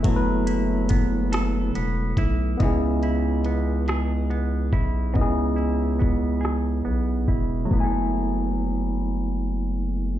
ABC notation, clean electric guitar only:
X:1
M:6/8
L:1/8
Q:3/8=47
K:F#dor
V:1 name="Clean electric guitar"
[F,B,EA] E B, A B, E | C, E B, G B, E | C, E B, G B, E | [F,B,EA]6 |]